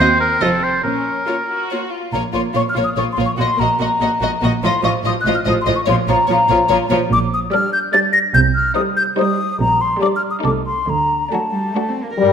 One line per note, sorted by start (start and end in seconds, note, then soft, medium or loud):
0.00 0.32 D#2 medium
0.00 0.40 C4 medium
0.00 0.19 C5 medium
0.20 0.44 A#4 medium
0.41 0.75 F1 medium
0.41 0.75 F2 medium
0.41 0.49 C4 soft
0.41 0.84 C4 soft
0.41 0.49 F4 soft
0.41 0.65 A4 medium
0.41 0.49 D#5 soft
0.63 0.82 C5 medium
0.83 1.18 A#1 soft
0.83 1.18 A#2 soft
0.83 1.23 C#4 soft
0.83 1.68 A#4 soft
1.27 1.35 A#3 soft
1.27 1.35 C#4 soft
1.27 1.35 F4 soft
1.27 1.36 C#5 soft
1.48 1.91 F#4 soft
1.71 1.80 A#3 soft
1.71 1.80 F4 soft
1.71 1.79 C#5 soft
1.91 2.11 F4 soft
2.12 2.21 A#1 medium
2.12 2.20 A#2 soft
2.12 2.21 A#3 soft
2.12 2.20 F4 soft
2.12 2.23 C#5 soft
2.12 2.19 A#5 medium
2.33 2.42 A#1 soft
2.33 2.42 A#2 soft
2.33 2.44 A#3 soft
2.33 2.41 F4 soft
2.33 2.42 C#5 soft
2.33 2.40 C6 medium
2.54 2.63 A#1 soft
2.54 2.63 A#2 soft
2.54 2.64 A#3 soft
2.54 2.62 F4 soft
2.54 2.64 C#5 soft
2.54 2.62 C#6 medium
2.69 2.75 F6 medium
2.74 2.85 A#1 soft
2.74 2.84 A#2 soft
2.74 2.85 A#3 soft
2.74 2.82 F4 soft
2.74 2.85 C#5 soft
2.84 2.90 D#6 medium
2.97 3.05 A#1 soft
2.97 3.05 A#2 soft
2.97 3.05 A#3 soft
2.97 3.05 F4 soft
2.97 3.05 C#5 soft
2.97 3.04 C#6 medium
3.12 3.18 C6 medium
3.17 3.26 A#1 soft
3.17 3.26 A#2 soft
3.17 3.25 A#3 soft
3.17 3.26 F4 soft
3.17 3.28 C#5 soft
3.26 3.32 C#6 medium
3.37 3.47 A#1 soft
3.37 3.46 A#2 soft
3.37 3.45 A#3 soft
3.37 3.46 F#4 soft
3.37 3.49 D#5 soft
3.37 3.61 C6 medium
3.58 3.68 A#1 soft
3.58 3.68 A#2 soft
3.58 3.66 A#3 soft
3.58 3.68 F#4 soft
3.58 3.69 D#5 soft
3.58 3.81 A#5 medium
3.79 3.88 A#1 soft
3.79 3.88 A#2 soft
3.79 3.87 A#3 soft
3.79 3.88 F#4 soft
3.79 3.89 D#5 soft
3.79 4.42 A#5 medium
4.00 4.08 A#1 soft
4.00 4.09 A#2 soft
4.00 4.08 A#3 soft
4.00 4.09 F#4 soft
4.00 4.11 D#5 soft
4.20 4.29 A#1 soft
4.20 4.30 A#2 soft
4.20 4.28 A#3 soft
4.20 4.30 F#4 soft
4.20 4.31 D#5 soft
4.41 4.50 A#1 soft
4.41 4.51 A#2 soft
4.41 4.49 A#3 soft
4.41 4.51 F#4 soft
4.41 4.53 D#5 soft
4.62 4.71 A1 medium
4.62 4.71 A2 soft
4.62 4.70 F3 soft
4.62 4.72 F4 soft
4.62 4.74 D#5 medium
4.62 4.83 C6 medium
4.84 4.93 A1 soft
4.84 4.92 A2 soft
4.84 4.93 F3 soft
4.84 4.92 F4 soft
4.84 4.92 D#5 soft
4.84 4.90 C#6 medium
5.04 5.12 A1 soft
5.04 5.12 A2 soft
5.04 5.15 F3 soft
5.04 5.14 F4 soft
5.04 5.14 D#5 soft
5.04 5.12 D#6 medium
5.21 5.27 F#6 medium
5.25 5.34 A1 medium
5.25 5.33 A2 soft
5.25 5.34 F3 soft
5.25 5.35 F4 soft
5.25 5.35 D#5 soft
5.35 5.40 F6 medium
5.46 5.55 A1 medium
5.46 5.54 A2 medium
5.46 5.54 F3 soft
5.46 5.56 F4 soft
5.46 5.54 D#5 soft
5.46 5.55 D#6 medium
5.61 5.67 C6 medium
5.66 5.75 A1 medium
5.66 5.74 A2 medium
5.66 5.75 F3 soft
5.66 5.75 F4 soft
5.66 5.75 D#5 medium
5.76 5.81 C#6 medium
5.87 5.96 A#1 medium
5.87 5.95 A#2 medium
5.87 5.97 F3 soft
5.87 5.96 F4 medium
5.87 5.95 C#5 medium
5.87 5.95 C6 medium
6.08 6.17 A#1 medium
6.08 6.16 A#2 soft
6.08 6.17 F3 soft
6.08 6.17 F4 medium
6.08 6.17 C#5 soft
6.08 6.29 A#5 medium
6.28 6.38 A#1 soft
6.28 6.37 A#2 medium
6.28 6.38 F3 medium
6.28 6.39 F4 medium
6.28 6.36 C#5 soft
6.28 6.90 A#5 medium
6.49 6.58 A#1 medium
6.49 6.57 A#2 medium
6.49 6.59 F3 soft
6.49 6.58 F4 soft
6.49 6.57 C#5 medium
6.69 6.78 A#1 medium
6.69 6.77 A#2 medium
6.69 6.78 F3 medium
6.69 6.79 F4 medium
6.69 6.78 C#5 medium
6.89 6.99 A#1 medium
6.89 6.97 A#2 medium
6.89 7.00 F3 medium
6.89 6.99 F4 medium
6.89 6.98 C#5 medium
7.11 7.44 A#1 medium
7.11 7.44 A#2 medium
7.11 7.19 D6 medium
7.34 7.40 D#6 medium
7.53 7.83 G3 medium
7.53 7.84 D4 medium
7.53 7.83 D5 medium
7.53 7.72 F6 medium
7.73 7.79 G6 medium
7.93 8.25 G3 medium
7.93 8.24 D4 medium
7.93 8.25 D5 medium
7.93 7.99 A6 medium
8.13 8.19 A#6 medium
8.34 8.68 C2 medium
8.34 8.68 C3 medium
8.34 8.40 G6 loud
8.55 8.75 F6 medium
8.75 9.08 G3 medium
8.75 9.07 D#4 medium
8.75 9.08 C5 medium
8.75 8.81 D#6 medium
8.97 9.03 G6 medium
9.18 9.49 G3 medium
9.18 9.49 D#4 medium
9.18 9.50 C5 medium
9.18 9.60 D#6 medium
9.60 9.93 A#1 medium
9.60 9.93 A#2 medium
9.60 9.83 A#5 medium
9.81 10.01 C6 medium
10.01 10.33 G3 medium
10.01 10.33 D4 medium
10.01 10.35 D5 medium
10.01 10.08 D6 medium
10.16 10.22 F6 medium
10.31 10.37 D#6 soft
10.44 10.79 C2 medium
10.44 10.79 C3 medium
10.44 10.77 A3 medium
10.44 10.77 D#4 medium
10.44 10.77 A4 medium
10.44 10.51 D6 medium
10.66 10.91 C6 medium
10.88 11.22 D2 medium
10.88 11.23 D3 medium
10.88 11.34 A#5 medium
11.31 11.40 F#3 soft
11.31 11.64 A3 soft
11.31 11.63 D4 soft
11.31 11.65 F#4 medium
11.31 11.97 A5 medium
11.53 11.74 G3 medium
11.74 11.89 A3 medium
11.74 12.07 A3 soft
11.74 12.08 D4 soft
11.74 12.08 F#4 soft
11.89 12.04 C4 medium
12.04 12.19 A#3 soft
12.18 12.33 G2 medium
12.18 12.33 G3 medium
12.18 12.33 A#4 medium